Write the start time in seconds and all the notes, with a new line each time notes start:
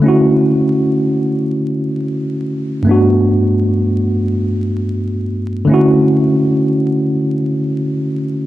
0.00 D3 A3 C#4
0.06 E4 F#4
2.83 G2 A3
2.87 B3 D4
2.91 F#4
5.65 D3 A3
5.69 C#4 E4
5.74 F#4